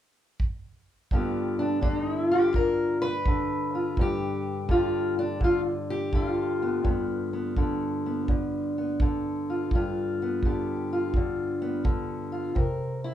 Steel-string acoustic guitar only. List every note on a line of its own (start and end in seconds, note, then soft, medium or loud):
1.12 3.99 G2 medium
1.12 1.80 D3 soft
1.12 4.63 B3 soft
1.12 1.59 F4 soft
1.12 2.31 G4 soft
1.59 1.82 D4 medium
1.81 2.54 D3 medium
1.81 2.13 D#4 medium
2.13 2.33 E4 medium
2.31 3.02 F4 medium
2.31 2.55 G4 medium
2.55 3.26 D3 medium
2.55 3.01 A#4 medium
3.02 3.98 B4 loud
3.27 4.67 D3 medium
3.75 4.02 F4 soft
3.99 6.84 G2 medium
3.99 5.43 G4 medium
4.69 5.39 D3 medium
4.69 5.18 F4 medium
5.19 5.42 D4 medium
5.40 6.12 D3 medium
5.40 5.60 F4 medium
5.90 6.85 G4 medium
6.13 7.56 D3 medium
6.13 9.48 F4 medium
6.62 6.85 B3 soft
6.84 9.68 G2 medium
6.84 7.33 B3 soft
7.33 7.57 B3 soft
7.57 8.27 D3 medium
7.57 8.06 B3 soft
8.06 8.76 B3 soft
8.29 9.00 D3 medium
8.78 9.69 B3 soft
9.01 10.43 D3 medium
9.50 9.69 F4 soft
9.75 12.55 G2 medium
9.75 10.91 F4 medium
10.22 11.61 B3 soft
10.45 11.15 D3 medium
10.45 12.56 G4 soft
10.93 12.31 F4 medium
11.16 11.83 D3 medium
11.62 12.54 B3 medium
11.84 12.56 D3 medium
12.32 12.54 F4 soft
12.55 13.14 C3 medium
12.55 13.04 A#4 soft
13.04 13.14 E4 medium